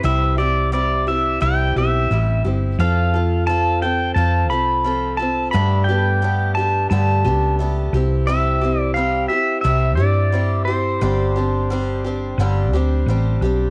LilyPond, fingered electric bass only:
\new Staff \with { instrumentName = "Fingered electric bass" } { \clef bass \time 4/4 \key c \major \tempo 4 = 88 c,2 c,8 b,,8 a,,8 g,,8 | f,2 f,8 c,4. | g,2 g,8 des,4 c,8~ | c,4. r8 c,8 g,4. |
g,,2 g,,8 d,8 a,,8 b,,8 | }